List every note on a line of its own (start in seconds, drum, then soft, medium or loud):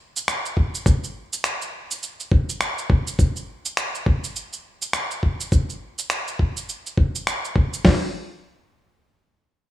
0.16 cabasa medium
0.28 finger snap medium
0.28 cabasa medium
0.46 cabasa soft
0.57 kick medium
0.75 cabasa medium
0.86 kick loud
0.86 cabasa soft
1.04 cabasa soft
1.33 cabasa medium
1.44 finger snap medium
1.44 cabasa soft
1.62 cabasa soft
1.91 cabasa medium
2.03 cabasa soft
2.20 cabasa soft
2.32 kick medium
2.49 cabasa medium
2.61 finger snap medium
2.61 cabasa soft
2.78 cabasa soft
2.90 kick medium
3.07 cabasa medium
3.19 kick medium
3.19 cabasa soft
3.36 cabasa soft
3.66 cabasa medium
3.77 finger snap medium
3.77 cabasa soft
3.95 cabasa soft
4.06 kick medium
4.24 cabasa medium
4.36 cabasa medium
4.53 cabasa soft
4.82 cabasa medium
4.93 finger snap medium
4.93 cabasa soft
5.11 cabasa soft
5.23 kick soft
5.40 cabasa medium
5.52 kick medium
5.52 cabasa soft
5.70 cabasa soft
5.99 cabasa medium
6.10 finger snap medium
6.10 cabasa soft
6.28 cabasa soft
6.39 kick medium
6.57 cabasa medium
6.69 cabasa soft
6.86 cabasa soft
6.97 kick medium
7.15 cabasa medium
7.27 finger snap medium
7.27 cabasa medium
7.45 cabasa soft
7.56 kick medium
7.74 cabasa medium
7.85 kick medium
7.85 snare medium
7.85 open hi-hat medium